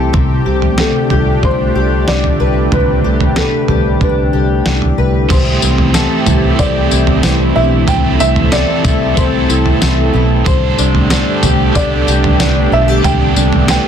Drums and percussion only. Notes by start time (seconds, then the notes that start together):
0.14 kick, floor tom
0.62 floor tom
0.78 snare
1.10 floor tom
1.43 kick, floor tom
2.08 snare
2.24 floor tom
2.72 floor tom
3.20 floor tom
3.36 snare
3.68 floor tom
4.01 kick, floor tom
4.66 snare
4.82 floor tom
5.30 kick, floor tom, crash, tambourine
5.62 tambourine
5.78 floor tom
5.94 snare, tambourine
6.26 floor tom, tambourine
6.59 kick, floor tom, tambourine
6.91 tambourine
7.07 floor tom
7.23 snare, tambourine
7.88 floor tom, tambourine
8.20 tambourine
8.36 floor tom
8.52 snare, tambourine
8.84 kick, floor tom, tambourine
9.17 kick, floor tom, tambourine
9.50 tambourine
9.66 floor tom
9.82 snare, tambourine
10.46 kick, floor tom, tambourine
10.79 tambourine
10.95 floor tom
11.10 snare, tambourine
11.43 floor tom, tambourine
11.75 kick, floor tom, tambourine
12.08 tambourine
12.24 floor tom
12.40 snare, tambourine
13.04 floor tom, tambourine
13.36 tambourine
13.53 floor tom
13.68 snare, tambourine